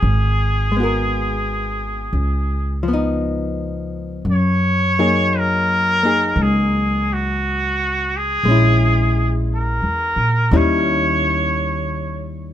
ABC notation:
X:1
M:4/4
L:1/16
Q:"Swing" 1/4=57
K:F#mix
V:1 name="Muted trumpet"
G8- G2 z6 | c4 A4 G2 F4 G2- | G3 z A4 c6 z2 |]
V:2 name="Hollow-body jazz guitar"
z2 [G,B,FA]6 z2 [^E,B,D]6 | z2 [F,A,DG]4 [A,DG]8- [A,DG]2 | [G,CE]8 [D,=G,CE]8 |]
V:3 name="Upright bass" clef=bass
G,,,8 C,,8 | F,,8 C,,8 | A,,,4- (3A,,,2 E,,2 A,,2 D,,8 |]